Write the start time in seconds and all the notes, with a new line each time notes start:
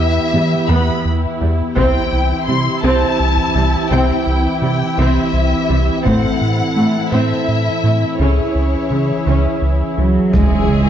Already playing: E3 B3 E4 G4 E5
0.00 E2
0.33 E2 E3 G3
0.68 E2 B3 B5
1.05 E2
1.41 E2 G3
1.76 C2 C3 E3 C4 E4 G4 E5 G5, taiko
2.12 C2
2.48 C3 G3 C6
2.83 C2 C3 C4 A5
3.19 C2
3.38 taiko
3.55 C2 C3 G3
3.91 C2 C3 C4 G5
4.26 C2
4.62 C3 G3 G5
4.98 C2 C3 C4 E5
5.33 C2
5.69 C2 C3 G3
6.05 A2 C4 E4 A4 F#5, taiko
6.41 A2
6.76 A2 A3
7.12 A2 C4 E5
7.48 A2
7.83 A2 A3
8.19 C#2 C#3 E3 C#4 G#4 C#5 E5
8.55 C#2
8.91 C#3 G#3
9.26 C#2 C#3 C#4
9.62 C#2
9.98 C#2 C#3 F#3 G#3
10.33 C#2 E3 G#3 C#4 G#4 C#5 E5, taiko, impact
10.69 C#3